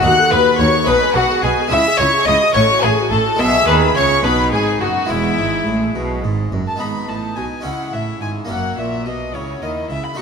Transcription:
0.00 double bass section D#2, cello section D#2, harpsichord A3 D#4 F#4, violin F#5, violin section F#5 F#6
0.04 harpsichord D#2, viola section F#4
0.18 viola section A4
0.31 cello section D#2, double bass section D#2, harpsichord D#2, viola section F#4, violin B4, violin section B4 B5
0.46 viola section A4
0.58 cello section D#2, double bass section D#2, harpsichord D#2, viola section F#4, violin C#5, violin section C#5 C#6
0.74 viola section A4
0.84 double bass section B1, cello section B2, harpsichord G#3 D#4 G#4, violin B4, violin section B4 B5, viola section B4
0.88 harpsichord B2
1.02 viola section G#4
1.14 double bass section B1, cello section B2, harpsichord B2, violin F#4, violin section F#4 F#5, viola section B4
1.30 viola section G#4
1.42 double bass section B1, cello section B2, harpsichord B2, violin G#4, violin section G#4 G#5, viola section B4
1.57 viola section G#4
1.68 double bass section C#2, cello section C#3, harpsichord G#3 C#4 G#4, viola section E4, violin E5, violin section E6
1.72 harpsichord C#3, violin section E5
1.85 viola section G#4
1.97 double bass section C#2, cello section C#3, harpsichord C#3, viola section E4, violin C#5, violin section C#5 C#6
2.13 viola section G#4
2.25 double bass section C#2, cello section C#3, harpsichord C#3, viola section E4, violin D#5, violin section D#5 D#6
2.40 viola section G#4
2.51 double bass section A1, harpsichord A3 C#4 F#4, viola section A4, violin C#5, violin section C#6
2.55 cello section A2, harpsichord A2, violin section C#5
2.69 viola section F#4
2.82 double bass section A1, cello section A2, harpsichord A2, violin G#4, violin section G#4 G#5, viola section A4
2.96 viola section F#4
3.10 double bass section A1, cello section A2, harpsichord A2, violin A4, violin section A4 A5, viola section A4
3.25 viola section F#4
3.35 double bass section B1, cello section B2, harpsichord G#3 B3 E4, viola section G#4, violin E5, violin section E6
3.40 harpsichord B2, violin section E5
3.67 double bass section D#2, cello section D#3, harpsichord D#3, violin B4, violin section B4 B5
3.95 double bass section C#2, cello section C#3, harpsichord C#3, violin C#5, violin section C#5 C#6
4.21 double bass section B1, cello section B2, harpsichord B2 B3 D#4, viola section D#4, violin section B4 B5, violin B4
4.52 double bass section G#1, cello section G#2, harpsichord G#2, violin G#4, violin section G#4 G#5
4.81 double bass section F#1, cello section F#2, harpsichord F#2, violin F#4, violin section F#4 F#5
5.05 double bass section E1, harpsichord G#3 B3 E4, violin E4, violin section E4
5.09 cello section E2, harpsichord E2, viola section G#3, violin section E5
5.38 double bass section G#1, cello section G#2, harpsichord G#2
5.67 double bass section A1, cello section A2, harpsichord A2
5.95 double bass section B1, cello section B2, harpsichord B2
6.23 double bass section G#1, cello section G#2, harpsichord G#2
6.52 double bass section F#1, cello section F#2, harpsichord F#2
6.66 violin section A5, violin A5
6.76 harpsichord G#3 B3 D#4
6.80 double bass section G#1, cello section G#2, harpsichord G#2, viola section D#4, violin section B4 B5, violin B5
7.08 double bass section A1, cello section A2, harpsichord A2, violin section A5, violin A5
7.36 double bass section B1, cello section B2, harpsichord B2, violin G#5, violin section G#5
7.61 harpsichord G#3 C#4 E4
7.65 double bass section C#2, cello section C#3, harpsichord C#3, viola section E4, violin section G#4 F#5, violin F#5
7.93 double bass section A1, cello section A2, harpsichord A2, violin section E5, violin E5
8.21 double bass section G#1, cello section G#2, harpsichord G#2, violin section G#5, violin G#5
8.45 harpsichord A#3 C#4 E4
8.49 double bass section F#1, cello section F#2, harpsichord F#2, viola section F#4, violin section A#4 F#5, violin F#5
8.77 double bass section A#1, cello section A#2, harpsichord A#2, violin section E5, violin E5
9.06 double bass section B1, cello section B2, harpsichord B2, violin section D#5, violin D#5
9.34 double bass section C#2, cello section C#3, harpsichord C#3, viola section E4, violin section F#4 C#5, violin C#5
9.62 double bass section D#2, cello section D#3, harpsichord D#3, violin D#5, violin section D#5
9.90 double bass section C#2, cello section C#3, harpsichord C#3, violin E5, violin section E5
10.04 violin section B5, violin B5
10.14 double bass section B1, harpsichord A3 D#4 F#4, violin C#6
10.18 cello section B2, harpsichord B2, viola section D#4, violin section C#6

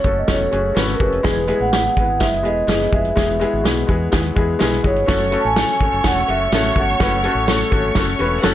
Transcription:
Already playing: tonewheel organ F#3 A3 C#4 A4, vibraphone C#5
0.04 fingered electric bass F#1, upright piano A3 C#4 F#4 A4, kick, closed hi-hat
0.18 vibraphone D#5
0.28 fingered electric bass E1, upright piano A3 C#4 F#4 A4, vibraphone C#5, kick, snare, closed hi-hat, tambourine
0.51 fingered electric bass F#1, upright piano A3 C#4 F#4 G#4, closed hi-hat
0.75 fingered electric bass G#1, upright piano A3 C#4 F#4 B4, snare, closed hi-hat, tambourine
0.88 snare
0.94 vibraphone A#4
0.99 fingered electric bass F1, upright piano A3 C#4 F#4 G#4, vibraphone B4, kick, closed hi-hat
1.12 closed hi-hat
1.23 fingered electric bass E1, tonewheel organ E3 G#3 B3 G#4, upright piano G#3 B3 E4 G#4, kick, snare, closed hi-hat, tambourine
1.47 upright piano G#3 B3 E4 G#4, closed hi-hat
1.60 fingered electric bass A1, vibraphone F#5
1.72 upright piano G#3 B3 E4 G#4, snare, closed hi-hat, tambourine
1.96 fingered electric bass G#1, upright piano G#3 B3 E4 B4, kick, closed hi-hat
2.20 fingered electric bass F#1, upright piano G#3 B3 E4 G#4, vibraphone E5, kick, snare, closed hi-hat, tambourine
2.34 closed hi-hat
2.43 fingered electric bass E1, upright piano G#3 B3 E4 G#4, vibraphone D#5, closed hi-hat
2.67 fingered electric bass F#1, upright piano G#3 B3 E4 G#4, snare, closed hi-hat, tambourine
2.81 snare
2.92 fingered electric bass F1, upright piano G#3 B3 E4 G#4, vibraphone E5, kick, closed hi-hat
3.05 closed hi-hat
3.15 fingered electric bass E1, upright piano G#3 B3 E4 G#4, tonewheel organ F#4, kick, snare, closed hi-hat, tambourine
3.40 upright piano G#3 B3 E4 G#4, closed hi-hat
3.53 fingered electric bass G#1
3.63 fingered electric bass B1, upright piano G#3 B3 E4 G#4, snare, closed hi-hat, tambourine
3.87 fingered electric bass E2, upright piano G#3 B3 E4 G#4, kick, closed hi-hat
4.12 fingered electric bass D#2, upright piano G#3 B3 E4 G#4, kick, snare, closed hi-hat, tambourine
4.26 closed hi-hat
4.36 fingered electric bass E2, upright piano G#3 B3 E4 G#4, kick, closed hi-hat
4.59 fingered electric bass B1, upright piano G#3 B3 E4 G#4, snare, closed hi-hat, tambourine
4.73 snare
4.83 fingered electric bass G1, upright piano G#3 B3 E4 G#4, vibraphone C#5, kick, closed hi-hat
4.96 closed hi-hat
5.07 fingered electric bass F#1, tonewheel organ F#3 A3 C#4 A4, upright piano A3 C#4 F#4 A4, string section C#5 C#6, kick, snare, closed hi-hat, tambourine
5.31 upright piano A3 C#4 F#4 A4, closed hi-hat
5.40 vibraphone A5
5.45 fingered electric bass A1, vibraphone G#5
5.56 upright piano A3 C#4 F#4 A4, snare, closed hi-hat, tambourine
5.80 fingered electric bass G#1, upright piano A3 C#4 F#4 A4, kick, closed hi-hat
5.93 fingered electric bass F#1
6.04 fingered electric bass E1, upright piano A3 C#4 F#4 A4, vibraphone F#5, kick, snare, closed hi-hat, tambourine
6.18 closed hi-hat
6.28 fingered electric bass F#1, upright piano A3 C#4 F#4 A4, vibraphone E5, closed hi-hat
6.52 fingered electric bass A1, upright piano A3 C#4 F#4 A4, snare, closed hi-hat, tambourine
6.76 fingered electric bass G1, upright piano A3 C#4 F#4 A4, vibraphone F#5, kick, closed hi-hat
7.00 fingered electric bass F#1, upright piano A3 C#4 F#4 B4, kick, snare, closed hi-hat, tambourine
7.24 upright piano A3 C#4 F#4 A4, closed hi-hat
7.35 fingered electric bass A1
7.47 upright piano A3 C#4 F#4 A4, snare, closed hi-hat, tambourine
7.71 fingered electric bass G#1, upright piano A3 C#4 F#4 A4, kick, closed hi-hat
7.95 fingered electric bass F#1, upright piano A3 C#4 F#4 A4, kick, snare, closed hi-hat, tambourine
8.08 closed hi-hat
8.19 fingered electric bass E1, upright piano A3 C#4 F#4 B4, closed hi-hat
8.42 fingered electric bass F#1, upright piano A3 C#4 F#4 A4, string section F#5 F#6, snare, closed hi-hat, tambourine

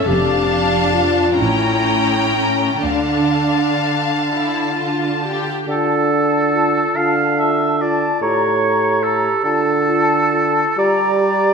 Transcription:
0.08 double bass section F1, cello section F2, viola section D4, clarinet G4, violin section F5 A5
0.94 clarinet F4
1.39 double bass section A1, cello section A2, viola section C#4, clarinet E4, violin section G5 A#5
2.35 clarinet C#4
2.84 double bass section D2, cello section D3, viola section D4, clarinet D4, violin section F5 A5
4.31 viola section E4
4.77 viola section F4
5.24 viola section G4
5.68 bassoon D3, clarinet F4, oboe A4, flute section A5
6.10 clarinet F4, flute section A5
6.54 clarinet F4, flute section A5
6.95 bassoon D3, clarinet F4, oboe F5, flute section A5
7.37 clarinet F4, oboe E5, flute section A5
7.80 clarinet F4, oboe D5, flute section A5
8.21 bassoon A2, clarinet G4, oboe C#5, flute section A#5
8.62 clarinet G4, flute section A#5
9.02 clarinet G4, oboe A4, flute section A#5
9.44 bassoon D3, clarinet F4, oboe A4, flute section A5
9.87 clarinet F4, flute section A5
10.33 clarinet F4, flute section A5
10.78 bassoon G3, clarinet G4, oboe D5, flute section A#5
11.20 clarinet G4, flute section A#5

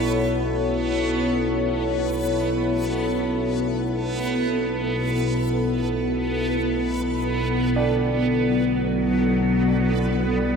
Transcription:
Already playing: synth drone B1 B2, synth texture B3 B4, ambient pad B3 E4 A4 C#5
7.75 synth drone B1 B2, synth texture B3 B4, church bells D4
8.42 cello F#3
10.35 cello G3

